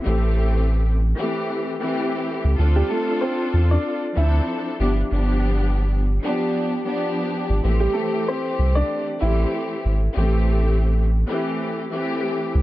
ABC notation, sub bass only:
X:1
M:4/4
L:1/16
Q:"Swing 16ths" 1/4=95
K:Am
V:1 name="Sub bass" clef=bass
A,,,6- A,,, z8 ^C,, | D,,2 z4 E,,2 z2 D,,2 z2 G,,,2 | G,,,6- G,,, z8 ^G,,, | A,,,2 z4 C,,2 z2 A,,,2 z2 ^G,,,2 |
A,,,6- A,,, z8 ^C,, |]